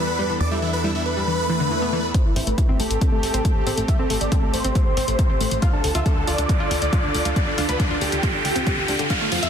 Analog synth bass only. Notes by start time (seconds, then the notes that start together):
Already playing: E2
0.41 E2
2.36 A1
2.47 A1
2.69 A1
2.80 A1
2.91 A1
3.23 A1
3.34 A1
3.56 A1
3.67 A1
3.77 A1
4.10 A1
4.21 A1
4.43 A1
4.54 A1
4.64 A1
4.97 A1
5.08 A1
5.30 A1
5.41 A1
5.51 A1
5.84 D2
5.95 D2
6.17 D2
6.28 D2
6.38 D2
6.71 D2
6.82 D2
7.04 D2
7.14 D2
7.25 D2
7.58 D2
7.69 D2
7.91 D2
8.01 D2
8.12 D2
8.45 D2
8.56 D1
8.78 D2
8.88 D2
8.99 D1
9.32 F2
9.43 F2